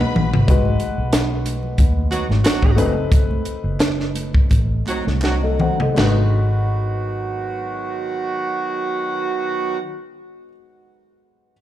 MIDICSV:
0, 0, Header, 1, 6, 480
1, 0, Start_track
1, 0, Key_signature, 5, "minor"
1, 0, Tempo, 652884
1, 351, Time_signature, 4, 2, 24, 8
1, 1794, Tempo, 688073
1, 3234, Tempo, 736196
1, 4194, Tempo, 759494
1, 7755, End_track
2, 0, Start_track
2, 0, Title_t, "String section"
2, 0, Program_c, 0, 48
2, 0, Note_on_c, 0, 71, 85
2, 0, Note_on_c, 0, 83, 87
2, 336, Note_off_c, 0, 71, 0
2, 337, Note_off_c, 0, 83, 0
2, 7755, End_track
3, 0, Start_track
3, 0, Title_t, "Grand piano"
3, 0, Program_c, 1, 0
3, 0, Control_c, 1, 64, 127
3, 0, Note_on_c, 1, 56, 96
3, 0, Note_on_c, 1, 59, 87
3, 0, Note_on_c, 1, 63, 82
3, 0, Note_on_c, 1, 66, 83
3, 0, Note_on_c, 1, 70, 89
3, 0, Note_on_c, 1, 71, 99
3, 221, Note_off_c, 1, 56, 0
3, 223, Note_off_c, 1, 59, 0
3, 226, Note_off_c, 1, 63, 0
3, 226, Note_off_c, 1, 66, 0
3, 251, Note_off_c, 1, 71, 0
3, 350, Note_on_c, 1, 56, 91
3, 357, Note_on_c, 1, 63, 75
3, 359, Control_c, 1, 64, 0
3, 359, Note_on_c, 1, 66, 84
3, 362, Note_off_c, 1, 70, 0
3, 363, Note_on_c, 1, 71, 111
3, 509, Control_c, 1, 64, 127
3, 1131, Note_off_c, 1, 56, 0
3, 1134, Note_off_c, 1, 63, 0
3, 1135, Note_off_c, 1, 66, 0
3, 1137, Note_off_c, 1, 71, 0
3, 2019, Note_on_c, 1, 57, 89
3, 2026, Note_on_c, 1, 60, 72
3, 2028, Note_on_c, 1, 63, 79
3, 2032, Note_on_c, 1, 71, 101
3, 2037, Control_c, 1, 64, 0
3, 2167, Control_c, 1, 64, 127
3, 2804, Note_off_c, 1, 57, 0
3, 2808, Note_off_c, 1, 60, 0
3, 2809, Note_off_c, 1, 63, 0
3, 2811, Note_off_c, 1, 71, 0
3, 3836, Note_on_c, 1, 75, 62
3, 3844, Note_on_c, 1, 69, 52
3, 3942, Note_off_c, 1, 75, 0
3, 3946, Note_off_c, 1, 69, 0
3, 3954, Note_on_c, 1, 78, 72
3, 3958, Note_on_c, 1, 72, 54
3, 4077, Note_off_c, 1, 78, 0
3, 4079, Note_off_c, 1, 72, 0
3, 4088, Note_on_c, 1, 75, 61
3, 4090, Note_on_c, 1, 69, 49
3, 4173, Note_on_c, 1, 56, 81
3, 4190, Note_on_c, 1, 63, 74
3, 4202, Control_c, 1, 64, 0
3, 4203, Note_on_c, 1, 66, 70
3, 4221, Note_on_c, 1, 71, 90
3, 4310, Control_c, 1, 64, 127
3, 4316, Note_off_c, 1, 69, 0
3, 4316, Note_off_c, 1, 75, 0
3, 7018, Note_off_c, 1, 56, 0
3, 7034, Note_off_c, 1, 63, 0
3, 7042, Note_off_c, 1, 66, 0
3, 7050, Note_off_c, 1, 71, 0
3, 7703, Control_c, 1, 64, 0
3, 7755, End_track
4, 0, Start_track
4, 0, Title_t, "Horn section"
4, 0, Program_c, 2, 61
4, 1554, Note_on_c, 2, 59, 79
4, 1555, Note_on_c, 2, 54, 80
4, 1555, Note_on_c, 2, 66, 87
4, 1556, Note_on_c, 2, 63, 71
4, 1664, Note_off_c, 2, 54, 0
4, 1664, Note_off_c, 2, 59, 0
4, 1664, Note_off_c, 2, 66, 0
4, 1665, Note_off_c, 2, 63, 0
4, 1794, Note_on_c, 2, 54, 78
4, 1794, Note_on_c, 2, 66, 84
4, 1795, Note_on_c, 2, 63, 79
4, 1796, Note_on_c, 2, 60, 75
4, 2137, Note_off_c, 2, 54, 0
4, 2137, Note_off_c, 2, 63, 0
4, 2137, Note_off_c, 2, 66, 0
4, 2138, Note_off_c, 2, 60, 0
4, 3474, Note_on_c, 2, 60, 73
4, 3474, Note_on_c, 2, 63, 82
4, 3477, Note_on_c, 2, 54, 83
4, 3477, Note_on_c, 2, 66, 90
4, 3579, Note_off_c, 2, 60, 0
4, 3579, Note_off_c, 2, 63, 0
4, 3582, Note_off_c, 2, 54, 0
4, 3582, Note_off_c, 2, 66, 0
4, 3710, Note_on_c, 2, 60, 70
4, 3711, Note_on_c, 2, 54, 75
4, 3711, Note_on_c, 2, 66, 81
4, 3712, Note_on_c, 2, 63, 70
4, 4063, Note_off_c, 2, 60, 0
4, 4064, Note_off_c, 2, 54, 0
4, 4064, Note_off_c, 2, 63, 0
4, 4064, Note_off_c, 2, 66, 0
4, 4194, Note_on_c, 2, 51, 72
4, 4194, Note_on_c, 2, 54, 72
4, 4194, Note_on_c, 2, 59, 68
4, 4194, Note_on_c, 2, 66, 78
4, 6595, Note_off_c, 2, 51, 0
4, 6595, Note_off_c, 2, 54, 0
4, 6595, Note_off_c, 2, 59, 0
4, 6595, Note_off_c, 2, 66, 0
4, 7755, End_track
5, 0, Start_track
5, 0, Title_t, "Fingered electric bass"
5, 0, Program_c, 3, 33
5, 119, Note_on_c, 3, 34, 100
5, 248, Note_off_c, 3, 34, 0
5, 248, Note_on_c, 3, 32, 81
5, 335, Note_off_c, 3, 32, 0
5, 359, Note_on_c, 3, 32, 97
5, 551, Note_off_c, 3, 32, 0
5, 720, Note_on_c, 3, 35, 79
5, 1280, Note_off_c, 3, 35, 0
5, 1316, Note_on_c, 3, 39, 96
5, 1512, Note_off_c, 3, 39, 0
5, 1683, Note_on_c, 3, 32, 85
5, 1775, Note_off_c, 3, 32, 0
5, 1928, Note_on_c, 3, 32, 98
5, 2032, Note_off_c, 3, 32, 0
5, 2032, Note_on_c, 3, 30, 97
5, 2421, Note_off_c, 3, 30, 0
5, 2630, Note_on_c, 3, 30, 93
5, 3206, Note_off_c, 3, 30, 0
5, 3238, Note_on_c, 3, 33, 96
5, 3430, Note_off_c, 3, 33, 0
5, 3603, Note_on_c, 3, 36, 86
5, 3999, Note_off_c, 3, 36, 0
5, 4202, Note_on_c, 3, 32, 98
5, 7041, Note_off_c, 3, 32, 0
5, 7755, End_track
6, 0, Start_track
6, 0, Title_t, "Drums"
6, 2, Note_on_c, 9, 63, 71
6, 5, Note_on_c, 9, 48, 68
6, 76, Note_off_c, 9, 63, 0
6, 79, Note_off_c, 9, 48, 0
6, 116, Note_on_c, 9, 62, 33
6, 116, Note_on_c, 9, 64, 82
6, 117, Note_on_c, 9, 45, 94
6, 189, Note_off_c, 9, 62, 0
6, 189, Note_off_c, 9, 64, 0
6, 191, Note_off_c, 9, 45, 0
6, 247, Note_on_c, 9, 43, 100
6, 320, Note_off_c, 9, 43, 0
6, 354, Note_on_c, 9, 36, 119
6, 355, Note_on_c, 9, 42, 82
6, 359, Note_on_c, 9, 62, 30
6, 428, Note_off_c, 9, 36, 0
6, 428, Note_off_c, 9, 42, 0
6, 432, Note_off_c, 9, 62, 0
6, 480, Note_on_c, 9, 63, 73
6, 553, Note_off_c, 9, 63, 0
6, 586, Note_on_c, 9, 42, 65
6, 591, Note_on_c, 9, 62, 35
6, 660, Note_off_c, 9, 42, 0
6, 664, Note_off_c, 9, 62, 0
6, 828, Note_on_c, 9, 42, 111
6, 830, Note_on_c, 9, 38, 119
6, 835, Note_on_c, 9, 62, 35
6, 837, Note_on_c, 9, 39, 79
6, 901, Note_off_c, 9, 42, 0
6, 904, Note_off_c, 9, 38, 0
6, 909, Note_off_c, 9, 62, 0
6, 910, Note_off_c, 9, 39, 0
6, 1072, Note_on_c, 9, 42, 84
6, 1074, Note_on_c, 9, 63, 45
6, 1145, Note_off_c, 9, 42, 0
6, 1147, Note_off_c, 9, 63, 0
6, 1197, Note_on_c, 9, 64, 57
6, 1271, Note_off_c, 9, 64, 0
6, 1308, Note_on_c, 9, 63, 79
6, 1309, Note_on_c, 9, 42, 80
6, 1311, Note_on_c, 9, 36, 95
6, 1381, Note_off_c, 9, 63, 0
6, 1383, Note_off_c, 9, 42, 0
6, 1384, Note_off_c, 9, 36, 0
6, 1556, Note_on_c, 9, 62, 31
6, 1556, Note_on_c, 9, 63, 67
6, 1557, Note_on_c, 9, 39, 62
6, 1560, Note_on_c, 9, 42, 77
6, 1629, Note_off_c, 9, 62, 0
6, 1629, Note_off_c, 9, 63, 0
6, 1630, Note_off_c, 9, 39, 0
6, 1633, Note_off_c, 9, 42, 0
6, 1689, Note_on_c, 9, 63, 72
6, 1697, Note_on_c, 9, 38, 33
6, 1763, Note_off_c, 9, 63, 0
6, 1771, Note_off_c, 9, 38, 0
6, 1802, Note_on_c, 9, 42, 93
6, 1804, Note_on_c, 9, 39, 89
6, 1807, Note_on_c, 9, 38, 98
6, 1872, Note_off_c, 9, 42, 0
6, 1873, Note_off_c, 9, 39, 0
6, 1877, Note_off_c, 9, 38, 0
6, 1921, Note_on_c, 9, 63, 67
6, 1923, Note_on_c, 9, 36, 91
6, 1991, Note_off_c, 9, 63, 0
6, 1993, Note_off_c, 9, 36, 0
6, 2029, Note_on_c, 9, 64, 73
6, 2031, Note_on_c, 9, 42, 69
6, 2099, Note_off_c, 9, 64, 0
6, 2100, Note_off_c, 9, 42, 0
6, 2266, Note_on_c, 9, 36, 124
6, 2268, Note_on_c, 9, 42, 100
6, 2336, Note_off_c, 9, 36, 0
6, 2338, Note_off_c, 9, 42, 0
6, 2398, Note_on_c, 9, 63, 69
6, 2468, Note_off_c, 9, 63, 0
6, 2501, Note_on_c, 9, 42, 63
6, 2571, Note_off_c, 9, 42, 0
6, 2743, Note_on_c, 9, 42, 106
6, 2745, Note_on_c, 9, 38, 124
6, 2745, Note_on_c, 9, 39, 73
6, 2745, Note_on_c, 9, 62, 29
6, 2812, Note_off_c, 9, 42, 0
6, 2814, Note_off_c, 9, 39, 0
6, 2815, Note_off_c, 9, 38, 0
6, 2815, Note_off_c, 9, 62, 0
6, 2882, Note_on_c, 9, 38, 37
6, 2952, Note_off_c, 9, 38, 0
6, 2984, Note_on_c, 9, 62, 31
6, 2984, Note_on_c, 9, 63, 49
6, 2990, Note_on_c, 9, 42, 85
6, 3054, Note_off_c, 9, 62, 0
6, 3054, Note_off_c, 9, 63, 0
6, 3060, Note_off_c, 9, 42, 0
6, 3114, Note_on_c, 9, 64, 53
6, 3123, Note_on_c, 9, 36, 101
6, 3184, Note_off_c, 9, 64, 0
6, 3193, Note_off_c, 9, 36, 0
6, 3228, Note_on_c, 9, 63, 81
6, 3236, Note_on_c, 9, 42, 80
6, 3237, Note_on_c, 9, 36, 93
6, 3294, Note_off_c, 9, 63, 0
6, 3301, Note_off_c, 9, 42, 0
6, 3302, Note_off_c, 9, 36, 0
6, 3469, Note_on_c, 9, 39, 52
6, 3469, Note_on_c, 9, 63, 67
6, 3476, Note_on_c, 9, 42, 73
6, 3534, Note_off_c, 9, 39, 0
6, 3534, Note_off_c, 9, 63, 0
6, 3541, Note_off_c, 9, 42, 0
6, 3589, Note_on_c, 9, 63, 63
6, 3606, Note_on_c, 9, 38, 34
6, 3654, Note_off_c, 9, 63, 0
6, 3671, Note_off_c, 9, 38, 0
6, 3699, Note_on_c, 9, 39, 101
6, 3711, Note_on_c, 9, 38, 60
6, 3764, Note_off_c, 9, 39, 0
6, 3776, Note_off_c, 9, 38, 0
6, 3829, Note_on_c, 9, 63, 69
6, 3894, Note_off_c, 9, 63, 0
6, 3943, Note_on_c, 9, 62, 32
6, 3943, Note_on_c, 9, 64, 72
6, 3946, Note_on_c, 9, 45, 95
6, 4008, Note_off_c, 9, 62, 0
6, 4008, Note_off_c, 9, 64, 0
6, 4011, Note_off_c, 9, 45, 0
6, 4078, Note_on_c, 9, 43, 86
6, 4143, Note_off_c, 9, 43, 0
6, 4191, Note_on_c, 9, 39, 81
6, 4193, Note_on_c, 9, 43, 91
6, 4193, Note_on_c, 9, 55, 82
6, 4196, Note_on_c, 9, 63, 73
6, 4197, Note_on_c, 9, 38, 99
6, 4254, Note_off_c, 9, 39, 0
6, 4257, Note_off_c, 9, 43, 0
6, 4257, Note_off_c, 9, 55, 0
6, 4260, Note_off_c, 9, 38, 0
6, 4260, Note_off_c, 9, 63, 0
6, 7755, End_track
0, 0, End_of_file